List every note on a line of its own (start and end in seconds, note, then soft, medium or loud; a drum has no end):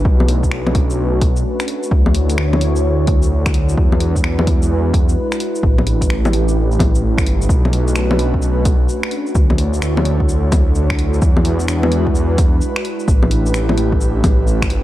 0.00 3.74 A3 medium
0.00 1.87 B4 medium
0.05 0.50 B1 loud
0.05 1.90 C#4 medium
0.05 1.89 D4 medium
0.05 5.60 F#4 medium
0.05 kick loud
0.20 low bongo soft
0.28 open hi-hat medium
0.43 kick medium
0.43 shaker medium
0.51 1.43 B1 medium
0.51 finger snap loud
0.67 low bongo medium
0.75 kick loud
0.75 open hi-hat medium
0.90 shaker medium
1.21 kick loud
1.21 open hi-hat medium
1.37 shaker medium
1.60 finger snap loud
1.60 shaker soft
1.68 open hi-hat medium
1.83 shaker medium
1.91 2.37 D2 loud
1.91 7.46 D4 medium
1.91 7.46 E4 medium
1.91 3.76 C#5 medium
1.91 kick loud
2.06 low bongo medium
2.15 open hi-hat medium
2.30 open hi-hat soft
2.30 shaker medium
2.38 3.06 D2 medium
2.38 finger snap loud
2.53 low bongo medium
2.61 open hi-hat medium
2.76 shaker medium
3.07 3.29 D2 medium
3.07 kick loud
3.07 open hi-hat medium
3.23 shaker medium
3.30 3.76 D2 medium
3.46 finger snap loud
3.46 kick loud
3.46 shaker soft
3.54 open hi-hat medium
3.69 shaker medium
3.77 4.23 E2 loud
3.77 5.61 G#3 medium
3.77 7.45 B4 medium
3.77 kick loud
3.92 low bongo soft
4.00 open hi-hat medium
4.16 kick medium
4.16 shaker medium
4.24 5.16 E2 medium
4.24 finger snap medium
4.39 low bongo medium
4.47 kick loud
4.47 open hi-hat medium
4.62 shaker medium
4.94 kick loud
4.94 open hi-hat medium
5.09 shaker medium
5.32 finger snap loud
5.32 shaker soft
5.40 open hi-hat medium
5.55 shaker soft
5.63 6.08 A1 loud
5.63 7.47 A3 medium
5.63 7.47 G4 medium
5.63 kick loud
5.78 low bongo medium
5.87 open hi-hat medium
6.01 kick medium
6.01 open hi-hat soft
6.01 shaker medium
6.09 6.78 A1 medium
6.09 finger snap loud
6.25 low bongo medium
6.25 shaker soft
6.33 open hi-hat medium
6.48 shaker medium
6.72 shaker soft
6.79 7.27 A1 medium
6.79 kick loud
6.79 open hi-hat medium
6.79 low bongo medium
6.95 shaker medium
7.18 finger snap loud
7.18 kick loud
7.18 shaker soft
7.26 7.48 G1 medium
7.26 open hi-hat medium
7.42 shaker medium
7.48 7.95 B1 loud
7.48 9.33 A3 medium
7.48 9.33 C#4 medium
7.48 14.83 D4 medium
7.48 11.17 F#4 medium
7.48 9.33 B4 medium
7.48 kick loud
7.48 shaker medium
7.65 low bongo soft
7.73 open hi-hat medium
7.88 shaker medium
7.96 8.88 B1 medium
7.96 finger snap loud
7.96 shaker medium
8.11 low bongo medium
8.19 open hi-hat medium
8.34 kick medium
8.42 shaker medium
8.65 kick loud
8.65 open hi-hat medium
8.65 shaker medium
8.89 shaker medium
9.03 finger snap loud
9.11 open hi-hat medium
9.27 shaker soft
9.34 9.80 D2 loud
9.34 11.19 A3 medium
9.34 13.03 E4 medium
9.34 11.19 C#5 medium
9.34 kick loud
9.34 shaker medium
9.50 low bongo soft
9.58 open hi-hat medium
9.74 shaker medium
9.82 10.51 D2 medium
9.82 finger snap loud
9.82 shaker medium
9.97 low bongo medium
10.05 open hi-hat medium
10.20 kick medium
10.29 shaker medium
10.52 10.74 D2 loud
10.52 kick loud
10.52 open hi-hat medium
10.52 low bongo medium
10.52 shaker medium
10.75 11.20 D2 medium
10.75 shaker medium
10.90 finger snap loud
10.90 kick medium
10.99 open hi-hat medium
11.14 shaker soft
11.22 11.67 E2 loud
11.22 13.06 G#3 medium
11.22 13.06 F#4 medium
11.22 14.83 B4 medium
11.22 kick loud
11.22 shaker medium
11.37 low bongo medium
11.45 open hi-hat medium
11.60 shaker medium
11.68 12.60 E2 medium
11.68 finger snap loud
11.68 shaker medium
11.83 low bongo medium
11.92 open hi-hat medium
12.07 kick medium
12.15 shaker medium
12.38 kick loud
12.38 open hi-hat medium
12.38 shaker medium
12.61 shaker medium
12.76 finger snap loud
12.85 open hi-hat medium
13.00 shaker soft
13.08 13.53 A1 loud
13.08 14.83 A3 medium
13.08 14.83 E4 medium
13.08 14.83 G4 medium
13.08 kick loud
13.08 shaker medium
13.23 low bongo soft
13.31 open hi-hat medium
13.46 shaker medium
13.54 14.23 A1 medium
13.54 finger snap loud
13.54 shaker medium
13.69 low bongo medium
13.78 open hi-hat medium
13.92 kick medium
14.01 shaker medium
14.24 14.71 A1 medium
14.24 kick loud
14.24 open hi-hat medium
14.24 low bongo medium
14.24 shaker medium
14.47 shaker medium
14.62 finger snap loud
14.62 kick medium
14.62 shaker soft
14.70 14.83 G1 loud
14.70 open hi-hat medium